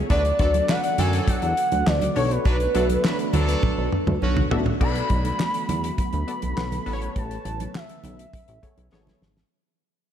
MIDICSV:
0, 0, Header, 1, 7, 480
1, 0, Start_track
1, 0, Tempo, 588235
1, 82, Time_signature, 4, 2, 24, 8
1, 8259, End_track
2, 0, Start_track
2, 0, Title_t, "Soft synth lead"
2, 0, Program_c, 0, 80
2, 91, Note_on_c, 0, 74, 103
2, 567, Note_on_c, 0, 78, 111
2, 579, Note_off_c, 0, 74, 0
2, 806, Note_on_c, 0, 80, 104
2, 818, Note_off_c, 0, 78, 0
2, 1044, Note_off_c, 0, 80, 0
2, 1048, Note_on_c, 0, 78, 109
2, 1523, Note_on_c, 0, 74, 111
2, 1535, Note_off_c, 0, 78, 0
2, 1758, Note_off_c, 0, 74, 0
2, 1763, Note_on_c, 0, 73, 107
2, 1885, Note_on_c, 0, 71, 96
2, 1897, Note_off_c, 0, 73, 0
2, 3444, Note_off_c, 0, 71, 0
2, 3926, Note_on_c, 0, 83, 115
2, 4852, Note_off_c, 0, 83, 0
2, 4889, Note_on_c, 0, 83, 115
2, 5813, Note_off_c, 0, 83, 0
2, 5847, Note_on_c, 0, 81, 102
2, 6325, Note_on_c, 0, 76, 86
2, 6337, Note_off_c, 0, 81, 0
2, 7524, Note_off_c, 0, 76, 0
2, 8259, End_track
3, 0, Start_track
3, 0, Title_t, "Analog polysynth"
3, 0, Program_c, 1, 90
3, 79, Note_on_c, 1, 59, 80
3, 80, Note_on_c, 1, 62, 73
3, 82, Note_on_c, 1, 66, 76
3, 84, Note_on_c, 1, 69, 73
3, 86, Note_on_c, 1, 74, 90
3, 193, Note_off_c, 1, 59, 0
3, 194, Note_off_c, 1, 62, 0
3, 196, Note_off_c, 1, 66, 0
3, 198, Note_off_c, 1, 69, 0
3, 200, Note_off_c, 1, 74, 0
3, 319, Note_on_c, 1, 59, 79
3, 320, Note_on_c, 1, 62, 73
3, 321, Note_on_c, 1, 66, 81
3, 322, Note_on_c, 1, 69, 80
3, 324, Note_on_c, 1, 74, 94
3, 812, Note_off_c, 1, 59, 0
3, 812, Note_off_c, 1, 62, 0
3, 813, Note_off_c, 1, 66, 0
3, 813, Note_off_c, 1, 69, 0
3, 814, Note_off_c, 1, 74, 0
3, 1757, Note_on_c, 1, 59, 80
3, 1759, Note_on_c, 1, 62, 77
3, 1761, Note_on_c, 1, 66, 83
3, 1763, Note_on_c, 1, 69, 79
3, 1765, Note_on_c, 1, 73, 95
3, 2144, Note_off_c, 1, 59, 0
3, 2145, Note_off_c, 1, 62, 0
3, 2146, Note_off_c, 1, 66, 0
3, 2147, Note_off_c, 1, 69, 0
3, 2148, Note_off_c, 1, 73, 0
3, 2239, Note_on_c, 1, 59, 85
3, 2240, Note_on_c, 1, 62, 77
3, 2242, Note_on_c, 1, 66, 82
3, 2243, Note_on_c, 1, 69, 74
3, 2245, Note_on_c, 1, 76, 88
3, 2732, Note_off_c, 1, 59, 0
3, 2732, Note_off_c, 1, 62, 0
3, 2733, Note_off_c, 1, 66, 0
3, 2734, Note_off_c, 1, 69, 0
3, 2735, Note_off_c, 1, 76, 0
3, 3679, Note_on_c, 1, 59, 82
3, 3680, Note_on_c, 1, 62, 85
3, 3682, Note_on_c, 1, 66, 81
3, 3684, Note_on_c, 1, 69, 81
3, 3684, Note_on_c, 1, 76, 100
3, 3793, Note_off_c, 1, 59, 0
3, 3794, Note_off_c, 1, 62, 0
3, 3797, Note_off_c, 1, 66, 0
3, 3798, Note_off_c, 1, 69, 0
3, 3799, Note_off_c, 1, 76, 0
3, 3919, Note_on_c, 1, 59, 82
3, 3921, Note_on_c, 1, 66, 74
3, 3924, Note_on_c, 1, 69, 78
3, 3925, Note_on_c, 1, 74, 87
3, 4412, Note_off_c, 1, 59, 0
3, 4413, Note_off_c, 1, 66, 0
3, 4414, Note_off_c, 1, 69, 0
3, 4415, Note_off_c, 1, 74, 0
3, 5118, Note_on_c, 1, 59, 67
3, 5121, Note_on_c, 1, 66, 52
3, 5123, Note_on_c, 1, 69, 57
3, 5124, Note_on_c, 1, 74, 69
3, 5232, Note_off_c, 1, 59, 0
3, 5235, Note_off_c, 1, 66, 0
3, 5237, Note_off_c, 1, 69, 0
3, 5239, Note_off_c, 1, 74, 0
3, 5358, Note_on_c, 1, 59, 78
3, 5360, Note_on_c, 1, 66, 70
3, 5362, Note_on_c, 1, 69, 64
3, 5364, Note_on_c, 1, 71, 78
3, 5588, Note_off_c, 1, 59, 0
3, 5590, Note_off_c, 1, 71, 0
3, 5591, Note_off_c, 1, 69, 0
3, 5597, Note_on_c, 1, 59, 96
3, 5599, Note_on_c, 1, 71, 102
3, 5601, Note_off_c, 1, 66, 0
3, 5601, Note_on_c, 1, 69, 91
3, 5604, Note_off_c, 1, 71, 0
3, 5604, Note_on_c, 1, 71, 88
3, 5656, Note_off_c, 1, 71, 0
3, 5657, Note_on_c, 1, 73, 113
3, 6368, Note_off_c, 1, 59, 0
3, 6370, Note_off_c, 1, 69, 0
3, 6398, Note_off_c, 1, 73, 0
3, 7038, Note_on_c, 1, 59, 75
3, 7040, Note_on_c, 1, 68, 62
3, 7043, Note_on_c, 1, 69, 64
3, 7046, Note_on_c, 1, 73, 81
3, 7152, Note_off_c, 1, 59, 0
3, 7155, Note_off_c, 1, 68, 0
3, 7157, Note_off_c, 1, 69, 0
3, 7160, Note_off_c, 1, 73, 0
3, 7278, Note_on_c, 1, 59, 97
3, 7281, Note_on_c, 1, 68, 75
3, 7283, Note_on_c, 1, 69, 81
3, 7285, Note_on_c, 1, 73, 108
3, 7526, Note_off_c, 1, 59, 0
3, 7527, Note_off_c, 1, 68, 0
3, 7528, Note_off_c, 1, 69, 0
3, 7530, Note_off_c, 1, 73, 0
3, 8259, End_track
4, 0, Start_track
4, 0, Title_t, "Horn section"
4, 0, Program_c, 2, 61
4, 84, Note_on_c, 2, 62, 125
4, 85, Note_on_c, 2, 54, 110
4, 85, Note_on_c, 2, 71, 119
4, 180, Note_off_c, 2, 54, 0
4, 180, Note_off_c, 2, 62, 0
4, 180, Note_off_c, 2, 71, 0
4, 324, Note_on_c, 2, 54, 90
4, 324, Note_on_c, 2, 62, 93
4, 324, Note_on_c, 2, 69, 110
4, 419, Note_off_c, 2, 62, 0
4, 419, Note_off_c, 2, 69, 0
4, 420, Note_off_c, 2, 54, 0
4, 561, Note_on_c, 2, 71, 105
4, 562, Note_on_c, 2, 62, 92
4, 563, Note_on_c, 2, 54, 87
4, 658, Note_off_c, 2, 62, 0
4, 658, Note_off_c, 2, 71, 0
4, 659, Note_off_c, 2, 54, 0
4, 802, Note_on_c, 2, 62, 92
4, 803, Note_on_c, 2, 54, 101
4, 803, Note_on_c, 2, 69, 116
4, 1254, Note_off_c, 2, 54, 0
4, 1254, Note_off_c, 2, 62, 0
4, 1254, Note_off_c, 2, 69, 0
4, 2005, Note_on_c, 2, 54, 114
4, 2005, Note_on_c, 2, 62, 114
4, 2005, Note_on_c, 2, 71, 112
4, 2100, Note_off_c, 2, 54, 0
4, 2100, Note_off_c, 2, 62, 0
4, 2100, Note_off_c, 2, 71, 0
4, 2245, Note_on_c, 2, 69, 101
4, 2246, Note_on_c, 2, 54, 97
4, 2246, Note_on_c, 2, 62, 87
4, 2340, Note_off_c, 2, 69, 0
4, 2341, Note_off_c, 2, 54, 0
4, 2341, Note_off_c, 2, 62, 0
4, 2486, Note_on_c, 2, 54, 86
4, 2486, Note_on_c, 2, 62, 85
4, 2486, Note_on_c, 2, 71, 99
4, 2580, Note_off_c, 2, 54, 0
4, 2581, Note_off_c, 2, 62, 0
4, 2581, Note_off_c, 2, 71, 0
4, 2724, Note_on_c, 2, 54, 113
4, 2724, Note_on_c, 2, 69, 126
4, 2725, Note_on_c, 2, 62, 102
4, 3174, Note_off_c, 2, 54, 0
4, 3175, Note_off_c, 2, 62, 0
4, 3175, Note_off_c, 2, 69, 0
4, 3445, Note_on_c, 2, 50, 97
4, 3445, Note_on_c, 2, 61, 93
4, 3445, Note_on_c, 2, 66, 112
4, 3636, Note_off_c, 2, 50, 0
4, 3636, Note_off_c, 2, 61, 0
4, 3636, Note_off_c, 2, 66, 0
4, 8259, End_track
5, 0, Start_track
5, 0, Title_t, "String machine"
5, 0, Program_c, 3, 50
5, 0, Note_on_c, 3, 59, 75
5, 82, Note_on_c, 3, 66, 91
5, 83, Note_on_c, 3, 57, 68
5, 84, Note_on_c, 3, 50, 82
5, 1746, Note_off_c, 3, 57, 0
5, 1746, Note_off_c, 3, 66, 0
5, 1747, Note_off_c, 3, 50, 0
5, 1761, Note_on_c, 3, 50, 81
5, 1761, Note_on_c, 3, 62, 88
5, 1762, Note_on_c, 3, 57, 73
5, 3893, Note_off_c, 3, 59, 0
5, 3900, Note_off_c, 3, 50, 0
5, 3900, Note_off_c, 3, 62, 0
5, 3901, Note_off_c, 3, 57, 0
5, 3924, Note_on_c, 3, 50, 75
5, 3924, Note_on_c, 3, 59, 74
5, 3924, Note_on_c, 3, 66, 92
5, 3925, Note_on_c, 3, 57, 70
5, 5587, Note_off_c, 3, 50, 0
5, 5587, Note_off_c, 3, 66, 0
5, 5601, Note_on_c, 3, 49, 85
5, 5601, Note_on_c, 3, 71, 79
5, 7731, Note_off_c, 3, 57, 0
5, 7731, Note_off_c, 3, 59, 0
5, 7740, Note_off_c, 3, 49, 0
5, 7740, Note_off_c, 3, 71, 0
5, 8259, End_track
6, 0, Start_track
6, 0, Title_t, "Analog synth bass"
6, 0, Program_c, 4, 38
6, 84, Note_on_c, 4, 38, 109
6, 263, Note_off_c, 4, 38, 0
6, 324, Note_on_c, 4, 38, 105
6, 502, Note_off_c, 4, 38, 0
6, 805, Note_on_c, 4, 42, 95
6, 983, Note_off_c, 4, 42, 0
6, 1165, Note_on_c, 4, 40, 101
6, 1253, Note_off_c, 4, 40, 0
6, 1404, Note_on_c, 4, 38, 87
6, 1493, Note_off_c, 4, 38, 0
6, 1525, Note_on_c, 4, 38, 104
6, 1703, Note_off_c, 4, 38, 0
6, 1765, Note_on_c, 4, 35, 100
6, 1943, Note_off_c, 4, 35, 0
6, 2004, Note_on_c, 4, 35, 100
6, 2183, Note_off_c, 4, 35, 0
6, 2246, Note_on_c, 4, 35, 95
6, 2423, Note_off_c, 4, 35, 0
6, 2724, Note_on_c, 4, 38, 103
6, 2902, Note_off_c, 4, 38, 0
6, 3086, Note_on_c, 4, 35, 89
6, 3174, Note_off_c, 4, 35, 0
6, 3325, Note_on_c, 4, 38, 101
6, 3414, Note_off_c, 4, 38, 0
6, 3446, Note_on_c, 4, 35, 98
6, 3624, Note_off_c, 4, 35, 0
6, 3685, Note_on_c, 4, 33, 85
6, 3863, Note_off_c, 4, 33, 0
6, 3925, Note_on_c, 4, 35, 91
6, 4103, Note_off_c, 4, 35, 0
6, 4164, Note_on_c, 4, 35, 110
6, 4342, Note_off_c, 4, 35, 0
6, 4645, Note_on_c, 4, 40, 104
6, 4823, Note_off_c, 4, 40, 0
6, 5004, Note_on_c, 4, 38, 106
6, 5093, Note_off_c, 4, 38, 0
6, 5244, Note_on_c, 4, 35, 86
6, 5333, Note_off_c, 4, 35, 0
6, 5364, Note_on_c, 4, 35, 112
6, 5543, Note_off_c, 4, 35, 0
6, 5604, Note_on_c, 4, 33, 104
6, 5782, Note_off_c, 4, 33, 0
6, 5843, Note_on_c, 4, 33, 109
6, 6022, Note_off_c, 4, 33, 0
6, 6082, Note_on_c, 4, 33, 100
6, 6261, Note_off_c, 4, 33, 0
6, 6563, Note_on_c, 4, 35, 90
6, 6742, Note_off_c, 4, 35, 0
6, 6922, Note_on_c, 4, 33, 105
6, 7012, Note_off_c, 4, 33, 0
6, 7163, Note_on_c, 4, 35, 101
6, 7252, Note_off_c, 4, 35, 0
6, 7283, Note_on_c, 4, 32, 107
6, 7462, Note_off_c, 4, 32, 0
6, 7521, Note_on_c, 4, 32, 79
6, 7700, Note_off_c, 4, 32, 0
6, 8259, End_track
7, 0, Start_track
7, 0, Title_t, "Drums"
7, 81, Note_on_c, 9, 42, 75
7, 83, Note_on_c, 9, 36, 99
7, 86, Note_on_c, 9, 62, 28
7, 163, Note_off_c, 9, 42, 0
7, 165, Note_off_c, 9, 36, 0
7, 168, Note_off_c, 9, 62, 0
7, 203, Note_on_c, 9, 42, 49
7, 203, Note_on_c, 9, 62, 32
7, 284, Note_off_c, 9, 42, 0
7, 284, Note_off_c, 9, 62, 0
7, 319, Note_on_c, 9, 42, 79
7, 323, Note_on_c, 9, 36, 94
7, 327, Note_on_c, 9, 63, 48
7, 401, Note_off_c, 9, 42, 0
7, 404, Note_off_c, 9, 36, 0
7, 408, Note_off_c, 9, 63, 0
7, 442, Note_on_c, 9, 42, 62
7, 445, Note_on_c, 9, 63, 81
7, 523, Note_off_c, 9, 42, 0
7, 527, Note_off_c, 9, 63, 0
7, 564, Note_on_c, 9, 38, 127
7, 567, Note_on_c, 9, 39, 102
7, 646, Note_off_c, 9, 38, 0
7, 648, Note_off_c, 9, 39, 0
7, 682, Note_on_c, 9, 42, 55
7, 763, Note_off_c, 9, 42, 0
7, 802, Note_on_c, 9, 42, 69
7, 803, Note_on_c, 9, 63, 89
7, 803, Note_on_c, 9, 64, 87
7, 884, Note_off_c, 9, 42, 0
7, 884, Note_off_c, 9, 63, 0
7, 884, Note_off_c, 9, 64, 0
7, 923, Note_on_c, 9, 42, 73
7, 1005, Note_off_c, 9, 42, 0
7, 1041, Note_on_c, 9, 42, 101
7, 1041, Note_on_c, 9, 63, 75
7, 1042, Note_on_c, 9, 36, 110
7, 1123, Note_off_c, 9, 36, 0
7, 1123, Note_off_c, 9, 42, 0
7, 1123, Note_off_c, 9, 63, 0
7, 1159, Note_on_c, 9, 42, 52
7, 1167, Note_on_c, 9, 62, 37
7, 1241, Note_off_c, 9, 42, 0
7, 1248, Note_off_c, 9, 62, 0
7, 1284, Note_on_c, 9, 42, 68
7, 1365, Note_off_c, 9, 42, 0
7, 1401, Note_on_c, 9, 42, 48
7, 1404, Note_on_c, 9, 63, 91
7, 1483, Note_off_c, 9, 42, 0
7, 1486, Note_off_c, 9, 63, 0
7, 1526, Note_on_c, 9, 38, 107
7, 1528, Note_on_c, 9, 39, 84
7, 1607, Note_off_c, 9, 38, 0
7, 1610, Note_off_c, 9, 39, 0
7, 1644, Note_on_c, 9, 62, 32
7, 1644, Note_on_c, 9, 63, 77
7, 1644, Note_on_c, 9, 64, 68
7, 1647, Note_on_c, 9, 42, 70
7, 1726, Note_off_c, 9, 62, 0
7, 1726, Note_off_c, 9, 63, 0
7, 1726, Note_off_c, 9, 64, 0
7, 1729, Note_off_c, 9, 42, 0
7, 1761, Note_on_c, 9, 46, 73
7, 1843, Note_off_c, 9, 46, 0
7, 1886, Note_on_c, 9, 42, 50
7, 1968, Note_off_c, 9, 42, 0
7, 2002, Note_on_c, 9, 42, 71
7, 2004, Note_on_c, 9, 36, 106
7, 2084, Note_off_c, 9, 42, 0
7, 2085, Note_off_c, 9, 36, 0
7, 2121, Note_on_c, 9, 62, 32
7, 2124, Note_on_c, 9, 42, 52
7, 2203, Note_off_c, 9, 62, 0
7, 2205, Note_off_c, 9, 42, 0
7, 2241, Note_on_c, 9, 42, 83
7, 2244, Note_on_c, 9, 63, 52
7, 2323, Note_off_c, 9, 42, 0
7, 2325, Note_off_c, 9, 63, 0
7, 2363, Note_on_c, 9, 42, 56
7, 2364, Note_on_c, 9, 63, 86
7, 2444, Note_off_c, 9, 42, 0
7, 2445, Note_off_c, 9, 63, 0
7, 2482, Note_on_c, 9, 62, 43
7, 2485, Note_on_c, 9, 38, 126
7, 2487, Note_on_c, 9, 39, 94
7, 2564, Note_off_c, 9, 62, 0
7, 2566, Note_off_c, 9, 38, 0
7, 2569, Note_off_c, 9, 39, 0
7, 2603, Note_on_c, 9, 42, 50
7, 2684, Note_off_c, 9, 42, 0
7, 2720, Note_on_c, 9, 63, 79
7, 2720, Note_on_c, 9, 64, 88
7, 2724, Note_on_c, 9, 42, 72
7, 2802, Note_off_c, 9, 63, 0
7, 2802, Note_off_c, 9, 64, 0
7, 2805, Note_off_c, 9, 42, 0
7, 2844, Note_on_c, 9, 42, 76
7, 2926, Note_off_c, 9, 42, 0
7, 2961, Note_on_c, 9, 62, 35
7, 2961, Note_on_c, 9, 63, 77
7, 2963, Note_on_c, 9, 36, 116
7, 2963, Note_on_c, 9, 48, 71
7, 3042, Note_off_c, 9, 62, 0
7, 3042, Note_off_c, 9, 63, 0
7, 3044, Note_off_c, 9, 36, 0
7, 3045, Note_off_c, 9, 48, 0
7, 3203, Note_on_c, 9, 47, 72
7, 3284, Note_off_c, 9, 47, 0
7, 3323, Note_on_c, 9, 47, 77
7, 3324, Note_on_c, 9, 63, 96
7, 3404, Note_off_c, 9, 47, 0
7, 3406, Note_off_c, 9, 63, 0
7, 3443, Note_on_c, 9, 62, 31
7, 3525, Note_off_c, 9, 62, 0
7, 3562, Note_on_c, 9, 63, 69
7, 3562, Note_on_c, 9, 64, 67
7, 3563, Note_on_c, 9, 45, 86
7, 3644, Note_off_c, 9, 63, 0
7, 3644, Note_off_c, 9, 64, 0
7, 3645, Note_off_c, 9, 45, 0
7, 3683, Note_on_c, 9, 43, 113
7, 3765, Note_off_c, 9, 43, 0
7, 3802, Note_on_c, 9, 43, 94
7, 3884, Note_off_c, 9, 43, 0
7, 3923, Note_on_c, 9, 49, 96
7, 3923, Note_on_c, 9, 62, 27
7, 3924, Note_on_c, 9, 36, 106
7, 4005, Note_off_c, 9, 36, 0
7, 4005, Note_off_c, 9, 49, 0
7, 4005, Note_off_c, 9, 62, 0
7, 4040, Note_on_c, 9, 62, 33
7, 4044, Note_on_c, 9, 42, 51
7, 4121, Note_off_c, 9, 62, 0
7, 4125, Note_off_c, 9, 42, 0
7, 4160, Note_on_c, 9, 42, 66
7, 4163, Note_on_c, 9, 36, 96
7, 4163, Note_on_c, 9, 63, 40
7, 4241, Note_off_c, 9, 42, 0
7, 4244, Note_off_c, 9, 63, 0
7, 4245, Note_off_c, 9, 36, 0
7, 4282, Note_on_c, 9, 42, 61
7, 4285, Note_on_c, 9, 63, 79
7, 4364, Note_off_c, 9, 42, 0
7, 4366, Note_off_c, 9, 63, 0
7, 4403, Note_on_c, 9, 62, 42
7, 4404, Note_on_c, 9, 38, 127
7, 4407, Note_on_c, 9, 39, 97
7, 4485, Note_off_c, 9, 62, 0
7, 4486, Note_off_c, 9, 38, 0
7, 4488, Note_off_c, 9, 39, 0
7, 4522, Note_on_c, 9, 42, 54
7, 4603, Note_off_c, 9, 42, 0
7, 4642, Note_on_c, 9, 63, 89
7, 4642, Note_on_c, 9, 64, 89
7, 4644, Note_on_c, 9, 42, 72
7, 4724, Note_off_c, 9, 63, 0
7, 4724, Note_off_c, 9, 64, 0
7, 4726, Note_off_c, 9, 42, 0
7, 4764, Note_on_c, 9, 42, 73
7, 4846, Note_off_c, 9, 42, 0
7, 4880, Note_on_c, 9, 62, 34
7, 4880, Note_on_c, 9, 63, 72
7, 4882, Note_on_c, 9, 36, 117
7, 4882, Note_on_c, 9, 42, 92
7, 4962, Note_off_c, 9, 62, 0
7, 4962, Note_off_c, 9, 63, 0
7, 4964, Note_off_c, 9, 36, 0
7, 4964, Note_off_c, 9, 42, 0
7, 4999, Note_on_c, 9, 42, 51
7, 5081, Note_off_c, 9, 42, 0
7, 5124, Note_on_c, 9, 42, 70
7, 5206, Note_off_c, 9, 42, 0
7, 5240, Note_on_c, 9, 42, 51
7, 5243, Note_on_c, 9, 63, 90
7, 5322, Note_off_c, 9, 42, 0
7, 5325, Note_off_c, 9, 63, 0
7, 5365, Note_on_c, 9, 38, 103
7, 5368, Note_on_c, 9, 39, 76
7, 5447, Note_off_c, 9, 38, 0
7, 5449, Note_off_c, 9, 39, 0
7, 5484, Note_on_c, 9, 63, 73
7, 5484, Note_on_c, 9, 64, 67
7, 5487, Note_on_c, 9, 42, 65
7, 5566, Note_off_c, 9, 63, 0
7, 5566, Note_off_c, 9, 64, 0
7, 5569, Note_off_c, 9, 42, 0
7, 5600, Note_on_c, 9, 46, 74
7, 5682, Note_off_c, 9, 46, 0
7, 5726, Note_on_c, 9, 42, 46
7, 5808, Note_off_c, 9, 42, 0
7, 5842, Note_on_c, 9, 42, 77
7, 5843, Note_on_c, 9, 36, 101
7, 5843, Note_on_c, 9, 62, 29
7, 5923, Note_off_c, 9, 42, 0
7, 5924, Note_off_c, 9, 36, 0
7, 5925, Note_off_c, 9, 62, 0
7, 5964, Note_on_c, 9, 42, 49
7, 6046, Note_off_c, 9, 42, 0
7, 6081, Note_on_c, 9, 63, 45
7, 6082, Note_on_c, 9, 42, 71
7, 6163, Note_off_c, 9, 63, 0
7, 6164, Note_off_c, 9, 42, 0
7, 6202, Note_on_c, 9, 63, 84
7, 6204, Note_on_c, 9, 42, 59
7, 6283, Note_off_c, 9, 63, 0
7, 6285, Note_off_c, 9, 42, 0
7, 6321, Note_on_c, 9, 62, 41
7, 6325, Note_on_c, 9, 38, 124
7, 6328, Note_on_c, 9, 39, 96
7, 6402, Note_off_c, 9, 62, 0
7, 6407, Note_off_c, 9, 38, 0
7, 6409, Note_off_c, 9, 39, 0
7, 6442, Note_on_c, 9, 42, 47
7, 6442, Note_on_c, 9, 62, 35
7, 6523, Note_off_c, 9, 42, 0
7, 6523, Note_off_c, 9, 62, 0
7, 6557, Note_on_c, 9, 63, 85
7, 6557, Note_on_c, 9, 64, 82
7, 6564, Note_on_c, 9, 42, 65
7, 6639, Note_off_c, 9, 63, 0
7, 6639, Note_off_c, 9, 64, 0
7, 6646, Note_off_c, 9, 42, 0
7, 6685, Note_on_c, 9, 42, 67
7, 6767, Note_off_c, 9, 42, 0
7, 6799, Note_on_c, 9, 63, 66
7, 6801, Note_on_c, 9, 36, 111
7, 6803, Note_on_c, 9, 42, 99
7, 6880, Note_off_c, 9, 63, 0
7, 6883, Note_off_c, 9, 36, 0
7, 6885, Note_off_c, 9, 42, 0
7, 6919, Note_on_c, 9, 42, 54
7, 7000, Note_off_c, 9, 42, 0
7, 7043, Note_on_c, 9, 36, 84
7, 7043, Note_on_c, 9, 42, 61
7, 7124, Note_off_c, 9, 36, 0
7, 7125, Note_off_c, 9, 42, 0
7, 7160, Note_on_c, 9, 63, 79
7, 7161, Note_on_c, 9, 42, 52
7, 7242, Note_off_c, 9, 63, 0
7, 7243, Note_off_c, 9, 42, 0
7, 7285, Note_on_c, 9, 38, 64
7, 7367, Note_off_c, 9, 38, 0
7, 7401, Note_on_c, 9, 62, 31
7, 7401, Note_on_c, 9, 63, 77
7, 7401, Note_on_c, 9, 64, 77
7, 7406, Note_on_c, 9, 38, 64
7, 7483, Note_off_c, 9, 62, 0
7, 7483, Note_off_c, 9, 63, 0
7, 7483, Note_off_c, 9, 64, 0
7, 7487, Note_off_c, 9, 38, 0
7, 7526, Note_on_c, 9, 38, 90
7, 7607, Note_off_c, 9, 38, 0
7, 7645, Note_on_c, 9, 38, 83
7, 7726, Note_off_c, 9, 38, 0
7, 8259, End_track
0, 0, End_of_file